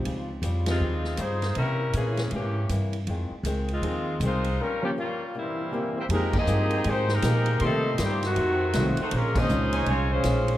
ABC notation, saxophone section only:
X:1
M:4/4
L:1/8
Q:"Swing" 1/4=159
K:Fm
V:1 name="Saxophone section"
z3 [A,CEF]3 [EFAc]2 | [G,D=EB]2 [=E,B,DA]2 [E,B,DG]2 z2 | z3 [A,CEF]3 [A,EFc]2 | [G,DFB] [F,B,DG] [G,B,DF]2 [G,B,C=E]3 [B,EGc] |
[A,EGB] [CGAe]3 [A,EGc] [A,EGB]3 | [G,CE=A]2 [E,B,CG] [E,=A,C_G]4 [A,EGc] | [A,DFB] [DAce]3 [A,CFd] [A,DFc]3 |]